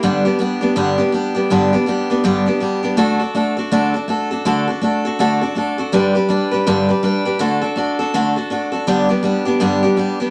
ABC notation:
X:1
M:4/4
L:1/8
Q:"Swing" 1/4=163
K:G
V:1 name="Steel-string acoustic guitar"
[G,,D,G,B,DG] [G,B,DG] [G,B,DG] [G,B,DG] [G,,D,G,B,DG] [G,B,DG] [G,B,DG] [G,B,DG] | [G,,D,G,B,DG] [G,B,DG] [G,B,DG] [G,B,DG] [G,,D,G,B,DG] [G,B,DG] [G,B,DG] [G,B,DG] | [D,A,DFA] [DFA] [A,DFA] [DFA] [D,A,DFA] [DFA] [A,DFA] [DFA] | [D,A,DFA] [DFA] [A,DFA] [DFA] [D,A,DFA] [DFA] [A,DFA] [DFA] |
[G,,D,G,DGB] [G,DGB] [G,DGB] [G,DGB] [G,,D,G,DGB] [G,DGB] [G,DGB] [G,DGB] | [D,A,DFA] [DFA] [A,DFA] [DFA] [D,A,DFA] [DFA] [A,DFA] [DFA] | [G,,D,G,B,DG] [G,B,DG] [G,B,DG] [G,B,DG] [G,,D,G,B,DG] [G,B,DG] [G,B,DG] [G,B,DG] |]